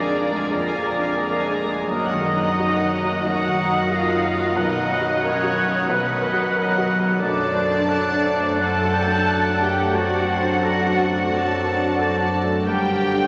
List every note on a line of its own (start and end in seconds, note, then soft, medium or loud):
0.00 0.48 F2 medium
0.00 1.84 F2 soft
0.00 0.51 D3 soft
0.00 0.75 F3 soft
0.00 0.51 G#3 soft
0.00 0.49 A#3 medium
0.00 0.08 D4 soft
0.00 0.52 D4 medium
0.00 0.21 G#4 medium
0.00 0.50 A#4 medium
0.00 0.50 A#4 soft
0.00 0.18 A#4 soft
0.00 0.50 D5 medium
0.00 0.52 D5 medium
0.00 0.18 F5 soft
0.00 0.18 G#5 soft
0.08 0.44 D4 soft
0.17 0.35 G#4 soft
0.17 0.35 D5 soft
0.17 0.35 A#5 soft
0.31 0.66 G#3 soft
0.31 0.52 G#5 soft
0.35 0.52 A#4 soft
0.35 0.52 F5 soft
0.51 1.85 F2 medium
0.51 1.85 D3 medium
0.51 1.86 G#3 medium
0.51 1.85 A#3 medium
0.51 1.52 A#3 medium
0.51 0.68 G#4 soft
0.51 1.50 A#4 medium
0.51 1.52 A#4 medium
0.51 1.85 A#4 medium
0.51 1.86 A#4 soft
0.51 0.68 D5 soft
0.51 1.86 D5 medium
0.51 0.67 A#5 soft
0.68 0.85 A#4 soft
0.68 0.85 F5 soft
0.68 0.85 G#5 soft
0.75 1.10 F3 soft
0.85 1.02 G#4 soft
0.85 1.02 D5 soft
0.85 1.02 A#5 soft
0.98 1.33 D4 soft
0.98 1.18 A#4 soft
0.98 1.18 G#5 soft
1.02 1.18 F5 soft
1.17 1.54 G#4 medium
1.17 1.34 G#4 soft
1.17 1.34 D5 soft
1.17 1.36 A#5 soft
1.34 1.52 A#4 soft
1.34 1.52 F5 soft
1.34 1.53 G#5 soft
1.40 1.78 D4 soft
1.50 1.69 G#4 soft
1.50 1.69 D5 soft
1.54 1.71 A#5 soft
1.64 1.88 G#3 soft
1.69 1.88 A#4 soft
1.69 1.88 F5 soft
1.69 1.89 G#5 soft
1.86 3.23 F#2 medium
1.86 4.54 F#2 medium
1.86 3.26 D#3 medium
1.86 3.26 F#3 medium
1.86 3.24 A#3 medium
1.86 2.22 A#3 medium
1.86 2.04 F#4 soft
1.86 2.21 A#4 medium
1.86 2.22 A#4 medium
1.86 2.97 A#4 medium
1.86 3.24 A#4 medium
1.86 2.04 D#5 soft
1.86 2.97 D#5 medium
1.90 2.06 A#5 medium
2.05 2.24 A#4 soft
2.05 2.24 F#5 soft
2.05 2.25 F#5 soft
2.12 2.50 D#3 medium
2.23 3.27 D#4 medium
2.23 2.41 F#4 soft
2.23 3.26 D#5 medium
2.23 2.42 D#5 soft
2.23 3.25 D#5 medium
2.23 2.43 A#5 soft
2.36 2.73 D#4 soft
2.36 2.58 F#5 soft
2.41 2.59 A#4 soft
2.41 2.60 F#5 soft
2.57 2.74 F#4 soft
2.57 2.96 F#4 medium
2.57 2.74 D#5 soft
2.57 2.76 A#5 soft
2.74 2.92 A#4 soft
2.74 2.93 F#5 soft
2.74 2.94 F#5 soft
2.80 3.17 D#4 medium
2.91 3.09 F#4 soft
2.91 3.09 D#5 soft
2.91 3.11 A#5 soft
3.04 3.40 F#3 soft
3.09 3.26 A#4 medium
3.09 3.26 F#5 soft
3.09 3.27 F#5 soft
3.26 4.54 F#2 medium
3.26 4.41 D#3 medium
3.26 4.41 F#3 medium
3.26 4.41 A#3 medium
3.26 3.42 F#4 soft
3.26 3.92 F#4 medium
3.26 4.54 A#4 medium
3.26 4.41 A#4 medium
3.26 3.42 D#5 soft
3.26 4.54 D#5 medium
3.26 3.93 F#5 medium
3.26 3.92 F#5 medium
3.26 3.42 A#5 medium
3.42 3.59 A#4 soft
3.42 3.59 F#5 soft
3.48 3.83 D#3 soft
3.58 3.75 F#4 soft
3.58 3.75 D#5 soft
3.58 3.76 A#5 soft
3.70 4.05 D#4 soft
3.76 3.92 A#4 soft
3.76 3.92 F#5 soft
3.91 4.58 F4 medium
3.91 4.26 F#4 medium
3.91 4.07 F#4 medium
3.91 4.07 D#5 medium
3.91 4.57 F5 medium
3.91 4.58 F5 medium
3.91 4.07 A#5 soft
4.07 4.24 A#4 soft
4.07 4.24 F#5 soft
4.07 4.25 F#5 soft
4.13 4.49 D#4 medium
4.23 4.41 F#4 soft
4.23 4.41 D#5 soft
4.23 4.41 A#5 soft
4.34 4.57 F#3 medium
4.40 4.57 A#4 soft
4.40 4.57 F#5 soft
4.40 4.56 F#5 soft
4.56 5.85 B1 medium
4.56 7.22 B1 medium
4.56 5.87 D#3 medium
4.56 5.87 F#3 medium
4.56 5.88 B3 medium
4.56 5.24 D#4 medium
4.56 5.87 A#4 medium
4.56 5.88 A#4 medium
4.56 4.73 B4 medium
4.56 4.73 D#5 medium
4.56 5.25 D#5 medium
4.56 5.23 D#5 medium
4.56 5.86 F#5 medium
4.56 4.73 F#5 medium
4.73 4.91 A#4 medium
4.73 4.91 D#5 soft
4.73 4.91 F#5 medium
4.79 5.14 F#2 medium
4.89 5.07 B4 soft
4.89 5.06 D#5 medium
4.89 5.07 F#5 medium
5.01 5.36 F#4 medium
5.06 5.23 A#4 soft
5.06 5.23 D#5 medium
5.06 5.24 F#5 soft
5.22 5.89 C#4 medium
5.22 5.58 A#4 medium
5.22 5.38 B4 soft
5.22 5.89 C#5 medium
5.22 5.91 C#5 medium
5.22 5.38 D#5 medium
5.22 5.38 F#5 medium
5.39 5.56 A#4 medium
5.39 5.56 D#5 medium
5.39 5.56 F#5 medium
5.44 5.80 F#4 medium
5.55 5.72 B4 medium
5.55 5.73 D#5 soft
5.55 5.73 F#5 medium
5.66 6.02 F#3 medium
5.71 5.89 A#4 medium
5.71 5.89 D#5 medium
5.71 5.90 F#5 medium
5.88 7.18 B1 medium
5.88 7.20 D#3 medium
5.88 7.20 F#3 medium
5.88 7.19 B3 medium
5.88 6.87 B3 medium
5.88 7.19 A#4 medium
5.88 7.20 A#4 medium
5.88 6.05 B4 medium
5.88 6.89 B4 medium
5.88 6.05 D#5 medium
5.88 7.18 F#5 medium
5.88 6.04 F#5 medium
6.05 6.22 A#4 medium
6.05 6.22 D#5 medium
6.05 6.23 F#5 soft
6.11 6.47 F#2 medium
6.22 6.39 B4 medium
6.22 6.40 D#5 medium
6.22 6.39 F#5 medium
6.33 6.69 F#4 medium
6.39 6.56 A#4 soft
6.39 6.56 D#5 medium
6.39 6.56 F#5 soft
6.55 6.91 A#4 medium
6.55 6.71 B4 medium
6.55 6.72 D#5 medium
6.55 6.71 F#5 medium
6.71 6.89 A#4 medium
6.71 6.88 D#5 soft
6.71 6.89 F#5 medium
6.78 7.13 F#4 medium
6.88 7.05 B4 soft
6.88 7.06 D#5 soft
6.88 7.05 F#5 soft
6.99 7.22 F#3 medium
7.05 7.22 A#4 medium
7.05 7.22 D#5 medium
7.05 7.23 F#5 soft
7.20 12.63 F#2 medium
7.20 8.57 F#2 medium
7.20 8.61 F#3 medium
7.20 8.58 A3 medium
7.20 8.61 D4 medium
7.20 8.57 D4 medium
7.20 7.84 A4 medium
7.20 8.58 A4 medium
7.20 9.91 A4 medium
7.20 8.56 D5 medium
7.20 7.52 D5 medium
7.20 8.63 D5 medium
7.20 7.90 D5 medium
7.20 8.57 A5 medium
7.44 7.80 F#3 medium
7.54 7.89 C5 medium
7.67 8.03 D4 medium
7.88 8.27 A4 medium
7.88 8.23 D5 medium
7.88 8.60 F#5 medium
8.12 8.51 D4 medium
8.24 8.62 C5 medium
8.24 8.60 D5 medium
8.37 8.75 A3 medium
8.60 9.92 F#2 medium
8.60 9.94 F#3 medium
8.60 9.93 A3 medium
8.60 9.94 D4 medium
8.60 9.62 A4 medium
8.60 9.93 A4 medium
8.60 8.94 C5 medium
8.60 9.11 D5 medium
8.60 9.93 F#5 medium
8.60 8.95 F#5 medium
8.60 9.62 A5 medium
8.60 9.64 A5 medium
8.84 9.20 F#3 soft
8.94 9.94 D5 medium
8.94 9.29 G5 medium
9.07 9.42 D4 medium
9.28 9.64 A4 medium
9.28 9.65 D5 medium
9.28 9.96 F#5 medium
9.49 9.86 D4 medium
9.62 9.96 G4 medium
9.62 9.99 A#4 medium
9.62 9.96 G5 medium
9.62 9.95 G5 medium
9.73 9.96 A3 medium
9.95 11.28 F#2 medium
9.95 12.50 F#3 medium
9.95 12.50 C4 medium
9.95 12.50 D4 medium
9.95 12.28 F#4 medium
9.95 12.50 A4 medium
9.95 10.66 C5 medium
9.95 10.29 D5 medium
9.95 11.29 F#5 medium
9.95 12.28 F#5 medium
9.95 10.66 A5 medium
10.18 10.55 F#3 medium
10.30 10.64 C5 medium
10.41 10.78 D4 medium
10.63 11.00 A4 medium
10.63 11.29 A4 medium
10.63 11.96 D5 medium
10.63 11.34 D5 medium
10.63 10.99 A#5 medium
10.86 11.23 D4 medium
10.97 12.49 A5 medium
11.09 11.45 A3 medium
11.30 12.63 F#2 medium
11.30 11.96 A4 medium
11.30 11.67 A4 medium
11.30 11.98 A5 medium
11.55 11.90 F#3 soft
11.65 12.00 A#4 medium
11.77 12.12 D4 medium
11.97 12.35 A4 medium
11.97 12.34 C5 medium
11.97 12.64 D5 medium
11.97 12.66 A5 medium
12.20 12.57 D4 medium
12.32 12.65 A4 medium
12.44 12.67 A3 medium
12.65 13.27 G2 medium
12.65 13.27 D3 medium
12.65 13.27 A#3 medium
12.65 13.27 D4 medium
12.65 13.27 G4 medium
12.65 13.27 A#4 medium
12.65 13.03 A#4 medium
12.65 13.27 D5 medium
12.65 13.27 G5 medium
12.90 13.27 D3 medium
13.01 13.27 C5 medium
13.14 13.27 D4 soft